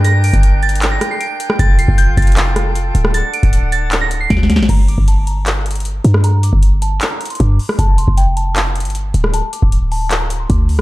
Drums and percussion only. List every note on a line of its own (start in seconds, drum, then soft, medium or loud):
0.04 closed hi-hat medium
0.24 closed hi-hat medium
0.24 open hi-hat medium
0.33 kick loud
0.33 closed hi-hat medium
0.43 closed hi-hat medium
0.63 closed hi-hat soft
0.69 closed hi-hat medium
0.75 closed hi-hat medium
0.82 clap loud
0.82 closed hi-hat medium
1.01 cross-stick medium
1.01 closed hi-hat medium
1.21 closed hi-hat medium
1.40 closed hi-hat medium
1.50 cross-stick loud
1.59 kick loud
1.59 closed hi-hat medium
1.79 closed hi-hat medium
1.88 kick medium
1.98 closed hi-hat medium
2.17 kick loud
2.17 closed hi-hat medium
2.22 closed hi-hat medium
2.27 closed hi-hat medium
2.32 closed hi-hat medium
2.37 clap loud
2.37 closed hi-hat medium
2.56 cross-stick medium
2.56 closed hi-hat medium
2.75 closed hi-hat medium
2.95 closed hi-hat medium
3.05 cross-stick loud
3.14 closed hi-hat medium
3.34 closed hi-hat medium
3.43 kick medium
3.43 closed hi-hat medium
3.53 closed hi-hat medium
3.72 closed hi-hat medium
3.92 clap loud
3.92 closed hi-hat medium
4.11 closed hi-hat medium
4.30 kick medium
4.30 snare medium
4.30 closed hi-hat medium
4.37 snare medium
4.43 snare medium
4.50 snare medium
4.50 closed hi-hat medium
4.56 snare loud
4.63 snare loud
4.69 kick loud
4.69 closed hi-hat medium
4.69 crash medium
4.88 closed hi-hat medium
4.98 kick medium
5.08 closed hi-hat medium
5.27 closed hi-hat medium
5.46 clap loud
5.46 closed hi-hat medium
5.66 closed hi-hat medium
5.71 closed hi-hat medium
5.75 closed hi-hat medium
5.80 closed hi-hat medium
5.85 closed hi-hat medium
6.04 closed hi-hat medium
6.14 cross-stick medium
6.24 closed hi-hat medium
6.43 closed hi-hat medium
6.53 kick medium
6.63 closed hi-hat medium
6.82 closed hi-hat medium
7.01 clap loud
7.01 closed hi-hat medium
7.21 closed hi-hat medium
7.25 closed hi-hat medium
7.30 closed hi-hat medium
7.35 closed hi-hat medium
7.40 kick medium
7.40 closed hi-hat medium
7.59 open hi-hat medium
7.69 cross-stick medium
7.79 kick loud
7.79 closed hi-hat medium
7.98 closed hi-hat medium
8.08 kick medium
8.18 closed hi-hat medium
8.37 closed hi-hat medium
8.56 clap loud
8.56 closed hi-hat medium
8.76 closed hi-hat medium
8.80 closed hi-hat medium
8.85 closed hi-hat medium
8.90 closed hi-hat medium
8.95 closed hi-hat medium
9.14 closed hi-hat medium
9.24 cross-stick medium
9.34 closed hi-hat medium
9.53 closed hi-hat medium
9.62 kick medium
9.72 closed hi-hat medium
9.92 open hi-hat medium
10.11 clap loud
10.11 closed hi-hat medium
10.30 closed hi-hat medium
10.50 kick medium
10.50 closed hi-hat medium
10.69 open hi-hat medium